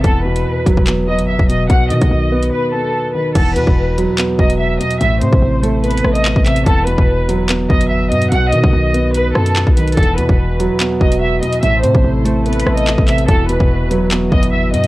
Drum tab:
CC |------------------------------------------------------------------------------------------------|------------------------------------------------------------------------------------------------|x-----------------------------------------------------------------------------------------------|------------------------------------------------------------------------------------------------|
HH |x-----------------x-----------------x-----------x-----------------x-----------------x-----------|x-----------x-----x-----------------------x-----------------------------------------------------|x-----------x-----------------------x-----------x-----------------x-----------------x-----x-----|x-----------x-----------------------x-----------x---x---x---------x-----------------x-----x-----|
CP |------------------------------------------------x-----------------------------------------------|------------------------------------------------------------------------------------------------|------------------------------------------------x-----------------------------------------------|------------------------------------------------------------------------x-----------x-----------|
SD |------------------------------------------------------------------------------------------------|------------------------------------------------------------------------------------------------|------------------------------------------------------------------------------------------------|------------------------------------------------------------r-----------------------------------|
BD |o-----------------------------------o-----o-----------------------------------o-----------------|o-----------------o-----------------------------------------------------------------------------|o-----------------o-----------------------------------------o-----------------------------------|------------------o-----------------------------------------------------------o-----------------|

CC |------------------------------------------------------------------------------------------------|------------------------------------------------------------------------------------------------|------------------------------------------------------------------------------------------------|------------------------------------------------------------------------------------------------|
HH |x-----------x-----------------------x-----------x-----------------x-----------------x-----x-----|x-----------x-----------------------x-----------x-----------------x-----------------x-----x--x--|x--x--------x-----------------------x-----------x-----------------x-----------------x-----x-----|x-----------x-----------------------x-----------x---x---x---------x-----------------x-----x-----|
CP |------------------------------------------------x-----------------------------------------------|------------------------------------------------------------------------x-----------------------|------------------------------------------------x-----------------------------------------------|------------------------------------------------------------------------x-----------x-----------|
SD |------------------------------------------------------------------------------------------------|------------------------------------------------------------r-----------------------------------|------------------------------------------------------------------------------------------------|------------------------------------------------------------r-----------------------------------|
BD |o-----------------o-----------------------------------------o-----------------------------------|------------------o-----------------------------------------------------------o-----------------|o-----------------o-----------------------------------------o-----------------------------------|------------------o-----------------------------------------------------------o-----------------|

CC |------------------------------------------------------------------------------------------------|
HH |x-----------x-----------------------x-----------x-----------------x-----------------x-----x-----|
CP |------------------------------------------------x-----------------------------------------------|
SD |------------------------------------------------------------------------------------------------|
BD |o-----------------o-----------------------------------------o-----------------------------------|